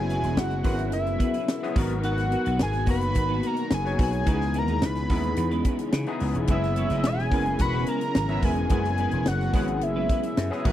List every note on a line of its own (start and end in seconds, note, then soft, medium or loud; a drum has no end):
0.00 0.17 F#1 loud
0.00 10.72 B2 medium
0.00 1.73 C#3 medium
0.00 4.23 F#3 medium
0.00 1.73 G#3 medium
0.00 0.64 B3 medium
0.00 0.64 C#4 medium
0.00 0.65 E4 medium
0.00 1.72 E4 medium
0.00 0.52 F#4 medium
0.00 1.63 G#4 medium
0.09 0.22 B3 medium
0.09 0.22 E4 medium
0.09 0.22 G#4 medium
0.09 0.21 B4 medium
0.09 0.40 G#5 medium
0.09 closed hi-hat medium
0.22 0.35 E1 medium
0.22 0.37 B3 medium
0.22 0.36 E4 medium
0.22 0.36 G#4 medium
0.22 0.36 B4 medium
0.22 snare soft
0.22 closed hi-hat medium
0.36 0.65 F#1 medium
0.36 0.65 F#5 loud
0.36 snare loud
0.51 muted clean electric guitar stroke medium
0.51 closed hi-hat soft
0.63 0.93 G#1 medium
0.63 0.81 B3 medium
0.63 1.46 B3 medium
0.63 1.46 C#4 medium
0.63 0.78 E4 medium
0.63 1.46 E4 medium
0.63 0.77 G#4 medium
0.63 1.47 A#4 medium
0.63 0.76 B4 loud
0.63 0.92 F#5 medium
0.63 kick loud
0.63 open hi-hat medium
0.78 muted clean electric guitar stroke medium
0.78 closed hi-hat soft
0.92 1.16 F#1 medium
0.92 1.73 E5 medium
0.92 muted clean electric guitar stroke soft
0.92 closed hi-hat medium
1.06 muted clean electric guitar stroke soft
1.06 closed hi-hat soft
1.19 1.34 B3 medium
1.19 1.33 E4 medium
1.19 1.33 G#4 medium
1.19 1.32 B4 medium
1.19 kick medium
1.19 closed hi-hat medium
1.33 1.46 B3 medium
1.33 1.46 E4 medium
1.33 1.47 G#4 medium
1.33 1.47 B4 medium
1.33 closed hi-hat medium
1.47 muted clean electric guitar stroke soft
1.47 snare loud
1.61 1.76 B3 loud
1.61 1.77 C#4 medium
1.61 1.77 E4 medium
1.61 1.77 G#4 loud
1.61 muted clean electric guitar stroke soft
1.61 snare soft
1.76 2.35 G#1 medium
1.76 4.24 D#3 medium
1.76 10.72 G#3 medium
1.76 1.93 B3 medium
1.76 2.70 B3 medium
1.76 1.90 D#4 medium
1.76 2.70 D#4 medium
1.76 1.89 F#4 medium
1.76 4.24 F#4 medium
1.76 2.70 F#4 medium
1.76 2.70 A#4 loud
1.76 1.89 B4 loud
1.76 kick loud
1.76 open hi-hat medium
1.89 muted clean electric guitar stroke soft
1.89 closed hi-hat medium
2.02 2.20 B3 medium
2.02 2.20 D#4 medium
2.02 2.21 F#4 medium
2.02 2.21 B4 medium
2.02 2.56 F#5 loud
2.02 closed hi-hat medium
2.18 snare soft
2.18 closed hi-hat soft
2.31 2.44 B3 medium
2.31 2.45 D#4 medium
2.31 2.45 F#4 medium
2.31 2.44 B4 medium
2.31 closed hi-hat medium
2.45 2.61 B1 medium
2.45 2.59 B3 medium
2.45 2.59 D#4 medium
2.45 2.59 F#4 medium
2.45 2.58 B4 medium
2.45 closed hi-hat medium
2.59 2.87 G#1 medium
2.59 2.87 G#5 medium
2.59 snare loud
2.73 muted clean electric guitar stroke medium
2.73 snare soft
2.73 closed hi-hat soft
2.86 3.11 F#1 loud
2.86 3.69 A#3 medium
2.86 3.03 B3 loud
2.86 3.69 B3 medium
2.86 3.01 D#4 medium
2.86 3.69 D#4 medium
2.86 3.01 F#4 medium
2.86 3.69 F#4 medium
2.86 3.00 B4 loud
2.86 kick medium
2.86 open hi-hat medium
2.90 3.48 B5 loud
3.01 muted clean electric guitar stroke soft
3.01 closed hi-hat medium
3.15 3.39 G#1 medium
3.15 muted clean electric guitar stroke soft
3.15 kick medium
3.15 closed hi-hat medium
3.29 3.42 B3 medium
3.29 3.43 D#4 medium
3.29 3.43 F#4 medium
3.29 3.43 B4 medium
3.43 3.56 B3 medium
3.43 3.56 D#4 medium
3.43 3.56 F#4 medium
3.43 3.56 B4 medium
3.43 3.73 A#5 loud
3.43 closed hi-hat medium
3.57 muted clean electric guitar stroke medium
3.57 closed hi-hat medium
3.71 3.94 F#1 medium
3.71 3.99 G#5 loud
3.71 muted clean electric guitar stroke medium
3.71 snare loud
3.85 4.20 B3 medium
3.85 4.20 D#4 medium
3.85 4.20 F#4 medium
3.85 4.21 C#5 medium
3.85 muted clean electric guitar stroke medium
3.85 snare soft
3.99 4.22 B1 medium
3.99 4.15 B3 medium
3.99 4.13 D#4 medium
3.99 4.12 F#4 medium
3.99 4.12 B4 medium
3.99 kick loud
3.99 open hi-hat medium
4.03 4.60 G#5 loud
4.13 muted clean electric guitar stroke soft
4.13 closed hi-hat medium
4.26 4.62 C#2 loud
4.26 10.61 C#3 medium
4.26 6.47 E3 medium
4.26 4.43 G#3 medium
4.26 4.96 B3 medium
4.26 10.62 C#4 loud
4.26 4.43 C#4 medium
4.26 4.96 D#4 medium
4.26 4.96 E4 medium
4.26 4.44 E4 medium
4.26 4.33 F#4 medium
4.26 4.44 B4 medium
4.26 kick loud
4.26 closed hi-hat medium
4.33 5.00 G#4 medium
4.41 snare soft
4.54 4.67 G#3 medium
4.54 4.67 C#4 medium
4.54 4.68 E4 medium
4.54 4.67 B4 medium
4.54 closed hi-hat medium
4.58 4.87 A#5 loud
4.68 4.80 D#2 medium
4.68 4.82 G#3 medium
4.68 4.82 C#4 medium
4.68 4.81 E4 medium
4.68 4.81 B4 medium
4.68 closed hi-hat medium
4.82 5.10 C#2 medium
4.82 5.67 B5 medium
4.82 snare loud
4.95 muted clean electric guitar stroke soft
4.95 snare soft
4.95 closed hi-hat soft
5.10 5.33 D#2 medium
5.10 5.27 G#3 medium
5.10 5.91 B3 medium
5.10 5.24 C#4 medium
5.10 5.92 D#4 medium
5.10 5.92 E4 medium
5.10 5.23 E4 medium
5.10 5.92 G#4 medium
5.10 5.22 B4 loud
5.10 kick medium
5.10 open hi-hat medium
5.23 muted clean electric guitar stroke medium
5.23 closed hi-hat soft
5.36 5.61 E2 medium
5.36 muted clean electric guitar stroke soft
5.36 closed hi-hat loud
5.51 5.64 G#3 medium
5.51 5.65 C#4 medium
5.51 5.65 E4 medium
5.51 5.66 B4 medium
5.51 closed hi-hat soft
5.64 5.78 G#3 medium
5.64 5.79 C#4 medium
5.64 5.79 E4 medium
5.64 5.78 B4 medium
5.64 kick medium
5.64 closed hi-hat medium
5.79 muted clean electric guitar stroke medium
5.79 closed hi-hat medium
5.93 6.05 C#3 loud
5.93 muted clean electric guitar stroke soft
5.93 snare loud
6.06 6.42 B3 medium
6.06 6.42 D#4 medium
6.06 6.42 E4 medium
6.06 6.43 G#4 loud
6.06 muted clean electric guitar stroke soft
6.06 closed hi-hat soft
6.20 6.33 C#2 medium
6.20 open hi-hat medium
6.35 6.47 E1 medium
6.35 muted clean electric guitar stroke soft
6.35 closed hi-hat medium
6.47 6.84 F#1 loud
6.47 10.72 F#3 medium
6.47 6.65 G#3 medium
6.47 7.18 B3 medium
6.47 7.19 C#4 medium
6.47 6.66 C#4 medium
6.47 7.19 E4 medium
6.47 6.66 E4 medium
6.47 7.19 G#4 medium
6.47 6.66 B4 medium
6.47 7.08 E5 loud
6.47 kick loud
6.47 closed hi-hat medium
6.63 snare soft
6.76 6.89 G#3 medium
6.76 6.88 C#4 medium
6.76 6.90 C#4 medium
6.76 6.90 E4 medium
6.76 6.89 B4 medium
6.76 6.88 C#5 medium
6.76 closed hi-hat medium
6.90 7.04 F#1 medium
6.90 7.04 G#3 medium
6.90 7.04 C#4 medium
6.90 7.02 D#4 medium
6.90 7.04 E4 medium
6.90 7.03 B4 medium
6.90 7.02 D#5 medium
6.90 snare soft
6.90 closed hi-hat medium
7.04 7.31 E1 medium
7.04 7.26 E4 medium
7.04 7.27 E5 medium
7.04 7.63 G#5 loud
7.04 snare loud
7.18 muted clean electric guitar stroke soft
7.18 snare soft
7.31 7.55 F#1 medium
7.31 7.48 G#3 medium
7.31 8.13 B3 medium
7.31 8.13 C#4 medium
7.31 7.46 C#4 medium
7.31 8.13 E4 medium
7.31 7.45 E4 medium
7.31 8.13 A#4 medium
7.31 7.44 B4 loud
7.31 kick loud
7.31 open hi-hat medium
7.45 muted clean electric guitar stroke medium
7.45 closed hi-hat soft
7.59 7.83 E1 medium
7.59 7.82 F#4 loud
7.59 7.82 F#5 loud
7.59 7.90 B5 loud
7.59 muted clean electric guitar stroke soft
7.59 kick medium
7.59 closed hi-hat loud
7.73 7.86 G#3 medium
7.73 7.87 C#4 medium
7.73 7.87 E4 medium
7.73 7.87 B4 medium
7.86 8.00 G#3 medium
7.86 8.01 C#4 medium
7.86 8.00 E4 medium
7.86 8.00 B4 medium
7.86 8.46 A#5 loud
7.86 closed hi-hat medium
8.01 muted clean electric guitar stroke soft
8.01 closed hi-hat medium
8.15 8.39 G#1 loud
8.15 muted clean electric guitar stroke soft
8.15 snare loud
8.29 8.64 B3 medium
8.29 8.64 C#4 medium
8.29 8.52 E4 medium
8.29 8.64 E4 medium
8.29 8.65 A#4 medium
8.29 8.51 E5 loud
8.29 muted clean electric guitar stroke soft
8.29 closed hi-hat soft
8.42 8.66 E1 medium
8.42 8.59 G#3 medium
8.42 8.57 C#4 medium
8.42 8.56 E4 medium
8.42 8.56 B4 medium
8.42 8.71 G#5 loud
8.42 kick loud
8.42 open hi-hat medium
8.56 muted clean electric guitar stroke soft
8.56 closed hi-hat medium
8.69 9.06 F#1 loud
8.69 8.87 G#3 medium
8.69 9.40 B3 medium
8.69 9.40 C#4 medium
8.69 8.87 C#4 loud
8.69 9.41 E4 medium
8.69 8.88 E4 medium
8.69 9.41 G#4 medium
8.69 8.88 B4 medium
8.69 9.29 G#5 loud
8.69 kick loud
8.69 closed hi-hat medium
8.84 snare soft
8.98 9.12 G#3 medium
8.98 9.12 C#4 medium
8.98 9.12 E4 medium
8.98 9.11 B4 medium
8.98 closed hi-hat medium
9.11 9.25 E1 medium
9.11 9.26 G#3 medium
9.11 9.26 C#4 medium
9.11 9.26 E4 medium
9.11 9.25 B4 medium
9.11 closed hi-hat medium
9.26 9.50 F#1 medium
9.26 9.77 F#5 loud
9.26 snare loud
9.40 muted clean electric guitar stroke soft
9.40 snare soft
9.53 9.81 G#1 medium
9.53 9.71 G#3 medium
9.53 10.35 B3 medium
9.53 10.36 C#4 medium
9.53 9.68 C#4 medium
9.53 10.35 E4 medium
9.53 9.68 E4 loud
9.53 10.36 G#4 medium
9.53 9.67 B4 loud
9.53 kick medium
9.53 open hi-hat medium
9.68 muted clean electric guitar stroke soft
9.68 closed hi-hat medium
9.77 9.85 F#5 medium
9.81 10.05 F#1 loud
9.81 10.66 E5 medium
9.81 muted clean electric guitar stroke soft
9.81 closed hi-hat medium
9.96 10.09 G#3 medium
9.96 10.10 C#4 medium
9.96 10.11 E4 medium
9.96 10.11 B4 medium
10.09 10.23 G#3 medium
10.09 10.24 C#4 medium
10.09 10.24 E4 medium
10.09 10.24 B4 medium
10.09 kick medium
10.09 closed hi-hat medium
10.23 muted clean electric guitar stroke soft
10.23 closed hi-hat medium
10.37 10.49 F#2 loud
10.37 muted clean electric guitar stroke soft
10.37 snare loud
10.50 10.63 B3 loud
10.50 10.65 C#4 medium
10.50 10.66 E4 medium
10.50 10.66 G#4 loud
10.50 muted clean electric guitar stroke soft
10.50 snare soft
10.64 10.72 G#1 medium
10.64 10.72 D#3 medium
10.64 10.72 G#3 medium
10.64 10.72 B3 medium
10.64 10.72 D#4 medium
10.64 10.72 F#4 medium
10.64 10.72 A#4 loud
10.64 10.72 B4 medium
10.64 kick loud
10.64 crash medium